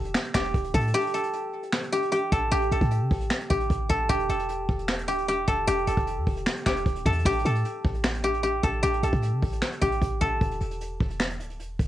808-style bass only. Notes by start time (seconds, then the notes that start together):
Already playing: E1
0.35 E1
0.54 D1
0.74 A2
2.32 A1
2.52 A1
2.71 A1
2.81 A2
3.01 C3
3.11 A1
3.51 A1
3.70 A1
3.90 A1
4.10 E1
4.29 E1
4.69 E1
5.08 D1
5.28 E1
5.48 E1
5.68 E1
5.87 E1
5.97 E1
6.17 E2
6.27 E1
6.66 E1
6.86 D1
7.06 E2
7.25 A1
7.45 A2
7.85 A1
8.64 A1
8.83 A1
9.03 A1
9.13 A2
9.33 C3
9.43 A1
9.82 A1
10.02 A1
10.21 A1
10.41 E1
10.61 E1
11.01 E1
11.40 D1
11.60 E1
11.79 E1